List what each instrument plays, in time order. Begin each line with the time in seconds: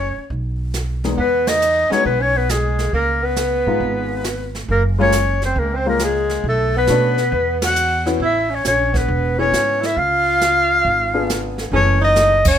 Already playing: upright bass F#1, tenor saxophone C#4, clarinet C#5
0.17 muted upright bass stroke
0.30 upright bass B1, brush sweep, kick
0.74 snare, hi-hat pedal
1.04 grand piano E2 G#3 B3 D#4 G#4, snare
1.17 upright bass E2, tenor saxophone B3, clarinet B4, brush sweep, kick
1.47 tenor saxophone D#4, clarinet D#5, snare, ride
1.62 hi-hat pedal
1.90 grand piano G#3 B3 D#4 F#4, tenor saxophone C#4, clarinet C#5, muted upright bass stroke, snare
2.04 upright bass B1, tenor saxophone B3, clarinet B4, brush sweep, kick
2.20 tenor saxophone C#4, clarinet C#5
2.36 tenor saxophone B3, clarinet B4
2.49 tenor saxophone G#3, clarinet G#4, snare, hi-hat pedal
2.79 snare
2.93 upright bass C#2, tenor saxophone A#3, clarinet A#4, brush sweep, kick
3.22 tenor saxophone B3, clarinet B4
3.36 snare, hi-hat pedal
3.66 upright bass G#2, grand piano G#3 B3 D#4 F4
3.80 upright bass G#1, brush sweep, kick
4.24 snare, hi-hat pedal
4.55 snare
4.68 upright bass F#1, tenor saxophone A#3, clarinet A#4, brush sweep, kick
4.99 grand piano G#3 A#3 C#4 F4, tenor saxophone C#4, clarinet C#5
5.12 snare, hi-hat pedal
5.42 clarinet C5, snare
5.46 tenor saxophone C4
5.56 upright bass C#2, tenor saxophone A#3, clarinet A#4, brush sweep, kick
5.74 tenor saxophone C4, clarinet C5
5.86 grand piano G#3 A#3 C#4 F4, tenor saxophone A#3, clarinet A#4
5.99 snare, hi-hat pedal
6.03 tenor saxophone G#3, clarinet G#4
6.29 snare
6.43 upright bass B1, brush sweep, kick
6.48 tenor saxophone A3, clarinet A4
6.77 tenor saxophone B3, clarinet B4
6.87 upright bass B2, grand piano A3 C#4 D4 F#4, snare, hi-hat pedal
7.18 snare
7.32 upright bass E2, brush sweep, kick
7.62 tenor saxophone F#4, snare, ride
7.66 clarinet F#5
7.76 hi-hat pedal
8.06 grand piano B3 C#4 E4 F#4, snare
8.20 upright bass A1, tenor saxophone E4, brush sweep, kick
8.25 clarinet E5
8.50 tenor saxophone C#4
8.55 clarinet C#5
8.64 upright bass A#1, tenor saxophone C#4, clarinet C#5, snare, hi-hat pedal
8.93 tenor saxophone B3, clarinet B4, kick, snare
9.08 upright bass E1, brush sweep, kick
9.38 grand piano B3 C#4 E4 G#4, tenor saxophone C#4, clarinet C#5
9.52 upright bass G#2, snare, hi-hat pedal
9.81 tenor saxophone E4, snare
9.86 clarinet E5
9.97 upright bass C#2, tenor saxophone F4, clarinet F5, brush sweep, kick
10.41 snare, hi-hat pedal
10.85 upright bass G#1, brush sweep, kick
11.14 grand piano B3 D4 F4 G#4
11.30 snare, hi-hat pedal
11.58 snare
11.72 upright bass F#1, grand piano E3 A3 C#4 G#4, tenor saxophone C#4, clarinet C#5, brush sweep, kick
12.01 tenor saxophone D#4, clarinet D#5
12.16 snare, hi-hat pedal
12.45 tenor saxophone C#4, clarinet C#5, kick, ride